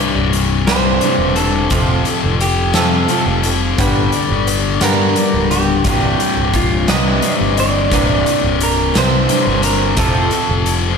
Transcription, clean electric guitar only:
0.67 1.36 C5 medium
1.36 2.41 A4 medium
2.41 2.75 G4 medium
2.75 3.48 A4 medium
4.84 5.50 A#4 medium
5.51 6.50 G4 medium
6.56 6.90 F4 medium
6.89 7.59 D#5 loud
7.60 8.58 D5 medium
8.63 8.97 A#4 medium
8.98 9.64 C5 loud
9.64 9.98 A#4 medium
9.98 10.71 A4 medium

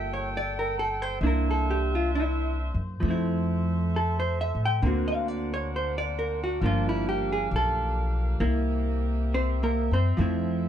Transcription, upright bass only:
0.00 1.17 G1 medium
1.21 2.70 C2 medium
2.74 3.00 F#2 medium
3.03 4.50 F2 medium
4.55 4.80 A2 soft
4.82 6.58 D2 medium
6.62 7.47 G1 medium
7.51 8.36 B1 medium
8.40 9.87 C2 medium
9.91 10.17 F#2 medium
10.18 10.69 F2 medium

